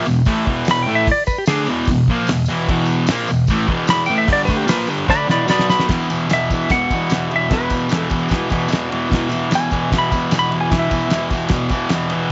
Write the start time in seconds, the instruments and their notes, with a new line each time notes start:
0.06 distorted electric guitar E2 B2, tambourine
0.25 distorted electric guitar A2 E3 A3, kick, open hi-hat, tambourine
0.46 distorted electric guitar E2 B2 E3, kick
0.65 snare, open hi-hat, tambourine
0.71 electric slide guitar B5
0.83 electric slide guitar G5
0.87 distorted electric guitar A2 E3 A3
0.95 electric slide guitar E5
1.07 kick, open hi-hat, tambourine
1.11 electric slide guitar D5
1.27 electric slide guitar B4, kick, tambourine
1.38 electric slide guitar G4
1.46 distorted electric guitar D3 A3 D4, electric slide guitar G#4, snare, open hi-hat, tambourine
1.66 distorted electric guitar E2 B2 E3, tambourine
1.85 kick, open hi-hat, tambourine
1.91 distorted electric guitar E2 B2
2.08 distorted electric guitar A#2 F3 A#3, kick
2.27 snare, open hi-hat, tambourine
2.31 distorted electric guitar E2 B2
2.46 distorted electric guitar E2 B2, tambourine
2.50 distorted electric guitar E3
2.65 kick, tambourine, crash
2.69 distorted electric guitar E2 B2 E3
2.85 tambourine
3.07 distorted electric guitar A#2 F3, snare, open hi-hat, tambourine
3.12 distorted electric guitar A#3
3.27 distorted electric guitar E2 B2, tambourine
3.47 distorted electric guitar A2 E3 A3, kick, open hi-hat, tambourine
3.68 distorted electric guitar E2 B2 E3, kick
3.87 electric slide guitar B5, snare, open hi-hat, tambourine
4.06 distorted electric guitar A2 E3, electric slide guitar G5, tambourine
4.10 distorted electric guitar A3
4.18 electric slide guitar E5
4.27 distorted electric guitar G2 D3 G3, kick, open hi-hat, tambourine
4.33 electric slide guitar D5
4.45 distorted electric guitar D3 A3, electric slide guitar B4, kick, tambourine
4.50 distorted electric guitar D4
4.57 electric slide guitar G4
4.65 distorted electric guitar A#2 F3 A#3, electric slide guitar B4, snare, open hi-hat, tambourine
4.87 distorted electric guitar G2 D3 G3, tambourine
5.07 distorted electric guitar D3 A3 D4, electric slide guitar D5 B5, kick, snare, tambourine
5.27 distorted electric guitar E2 B2 E3, electric slide guitar D5 B5, snare, tambourine
5.47 distorted electric guitar B2 F#3 B3, electric slide guitar D5 B5, snare, tambourine
5.59 snare
5.69 electric slide guitar B5, snare, tambourine
5.79 snare
5.87 distorted electric guitar E2 B2 E3, kick, snare, crash, tambourine
6.00 tambourine
6.09 distorted electric guitar B2 E3, ride, tambourine
6.21 tambourine
6.28 distorted electric guitar E2 B2 E3, snare, ride, tambourine
6.33 electric slide guitar E5
6.50 distorted electric guitar B2 E3, kick, ride, tambourine
6.70 distorted electric guitar E2 B2, electric slide guitar F#5, kick, snare, ride, tambourine
6.74 distorted electric guitar E3
6.91 distorted electric guitar E2 B2 E3, kick, ride, tambourine
7.02 tambourine
7.10 distorted electric guitar E2 B2, snare, ride, tambourine
7.14 distorted electric guitar E3
7.30 distorted electric guitar B2 E3, ride
7.36 electric slide guitar E5
7.50 distorted electric guitar E2 B2 E3, electric slide guitar B4, kick, snare, ride, tambourine
7.61 tambourine
7.70 distorted electric guitar E3, kick, ride, tambourine
7.75 distorted electric guitar B2
7.80 tambourine
7.89 distorted electric guitar E2 B2, snare, ride, tambourine
7.94 distorted electric guitar E3, electric slide guitar A4
8.10 distorted electric guitar E3, kick, ride, tambourine
8.15 distorted electric guitar B2
8.19 tambourine
8.28 distorted electric guitar E2 B2, kick, snare, ride, tambourine
8.33 distorted electric guitar E3
8.50 distorted electric guitar E2 B2 E3, kick, ride, tambourine
8.58 tambourine
8.68 distorted electric guitar E2 B2 E3, ride, tambourine
8.73 snare
8.90 distorted electric guitar B2 E3, ride
9.09 distorted electric guitar E2 B2, kick, snare, tambourine, crash
9.13 distorted electric guitar E3
9.19 tambourine
9.29 distorted electric guitar E3, ride, tambourine
9.34 distorted electric guitar B2
9.50 distorted electric guitar E2 B2 E3, snare, ride, tambourine
9.55 electric slide guitar G#5
9.71 distorted electric guitar B2 E3, kick, ride, tambourine
9.92 distorted electric guitar E2 B2 E3, kick, snare, ride, tambourine
9.98 electric slide guitar B5
10.11 distorted electric guitar E2 B2 E3, kick, ride, tambourine
10.22 tambourine
10.31 distorted electric guitar E2 B2 E3, snare, ride, tambourine
10.39 electric slide guitar B5
10.51 distorted electric guitar B2 E3, ride
10.61 electric slide guitar G#5
10.70 distorted electric guitar E2 B2 E3, kick, snare, ride, tambourine
10.79 electric slide guitar E5, tambourine
10.90 distorted electric guitar B2 E3, kick, ride, tambourine
11.02 tambourine
11.09 distorted electric guitar E2 B2, snare, ride, tambourine
11.13 distorted electric guitar E3
11.21 tambourine
11.31 distorted electric guitar B2 E3, kick, ride, tambourine
11.42 tambourine
11.49 distorted electric guitar E2, kick, snare, ride
11.53 distorted electric guitar B2 E3, tambourine
11.69 distorted electric guitar E2 B2 E3, kick, ride, tambourine
11.89 distorted electric guitar E2, snare, ride, tambourine
11.94 distorted electric guitar B2 E3
12.10 distorted electric guitar E3, ride, tambourine
12.14 distorted electric guitar B2